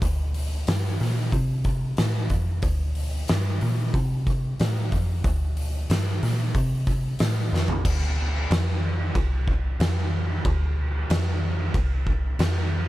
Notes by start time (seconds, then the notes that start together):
0.02 D2, kick, open hi-hat
0.34 open hi-hat
0.67 G2, snare, open hi-hat
1.00 A#2, snare, open hi-hat
1.32 C3, kick, open hi-hat
1.64 kick, open hi-hat
1.97 A2, snare, open hi-hat
2.30 F2, kick, open hi-hat
2.62 D2, kick, open hi-hat
2.95 open hi-hat
3.28 G2, snare, open hi-hat
3.61 A#2, open hi-hat
3.94 C3, kick, open hi-hat
4.27 kick, open hi-hat
4.60 A2, snare, open hi-hat
4.92 F2, kick, open hi-hat
5.24 D2, kick, open hi-hat
5.57 open hi-hat
5.90 G2, snare, open hi-hat
6.23 A#2, snare, open hi-hat
6.55 C3, kick, open hi-hat
6.87 kick, open hi-hat
7.19 A2, snare, open hi-hat
7.52 F2, snare
7.68 floor tom
7.85 D2, kick, crash
8.51 F2, snare, crash
9.15 C2, kick, crash
9.48 kick
9.80 F2, snare, crash
10.45 D2, kick, crash
11.10 F2, snare, crash
11.74 C2, kick, crash
12.07 kick
12.39 F2, snare, crash